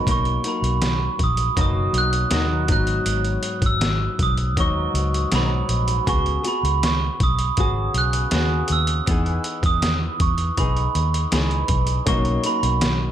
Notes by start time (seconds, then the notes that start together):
0.06 B1 B2 F#3 A#3 D#4, kick, closed hi-hat
0.11 C#6
0.25 closed hi-hat
0.44 F#3 A#3 D#4, closed hi-hat
0.48 B5
0.62 B1, closed hi-hat
0.82 snare, closed hi-hat
1.19 A#1, kick, closed hi-hat
1.24 D#6
1.37 closed hi-hat
1.56 F#1 B2 F#3 A#3 D#4, kick, closed hi-hat
1.61 D#6
1.93 B1, closed hi-hat
1.98 F#6
2.13 closed hi-hat
2.31 D#2 B2 F#3 A#3 D#4, snare, closed hi-hat
2.68 G#1 F#3 B3 D#4, kick, closed hi-hat
2.72 G#2 F#6
2.87 closed hi-hat
3.06 G#1, closed hi-hat
3.25 closed hi-hat
3.43 closed hi-hat
3.61 G#1, kick, closed hi-hat
3.66 E6
3.81 snare, closed hi-hat
4.19 B1 D#6, kick, closed hi-hat
4.37 closed hi-hat
4.56 D#2 G#2 F#3 B3 D#4 C#6, kick, closed hi-hat
4.94 C#2, closed hi-hat
5.14 closed hi-hat
5.31 B1 G#2 F#3 B3 D#4 B5, snare, closed hi-hat
5.69 A#1, closed hi-hat
5.88 closed hi-hat
6.06 C#2 C#3 B3 F#4 G#4 C#6, kick, closed hi-hat
6.26 closed hi-hat
6.43 B3 F#4 G#4, closed hi-hat
6.48 B5
6.63 C#2, closed hi-hat
6.83 C#6, snare, closed hi-hat
7.20 B1 D#6, kick, closed hi-hat
7.39 closed hi-hat
7.57 G#1 C#3 B3 F#4 G#4 D#6, kick, closed hi-hat
7.94 B1 F#6, closed hi-hat
8.13 closed hi-hat
8.31 D#2 C#3 B3 F#4, snare, closed hi-hat
8.35 G#4
8.68 D#2, closed hi-hat
8.72 E6
8.87 closed hi-hat
9.06 E2 E3 B3 D#4, kick, closed hi-hat
9.11 G#4
9.26 closed hi-hat
9.44 closed hi-hat
9.63 E2 D#6, kick, closed hi-hat
9.82 snare, closed hi-hat
10.20 E2 C#6, kick, closed hi-hat
10.38 closed hi-hat
10.57 B1 B3 D#4 G#4 B5, kick, closed hi-hat
10.77 closed hi-hat
10.95 D#2, closed hi-hat
11.14 closed hi-hat
11.31 C#2 E3 B3 D#4 G#4 B5, snare, closed hi-hat
11.51 closed hi-hat
11.68 B1, kick, closed hi-hat
11.87 closed hi-hat
12.06 B1 B2 F#3 A#3 C#4 D#4 F#4 C#6, kick, closed hi-hat
12.25 closed hi-hat
12.44 F#3 A#3 D#4 B5, closed hi-hat
12.63 B1, closed hi-hat
12.81 snare, closed hi-hat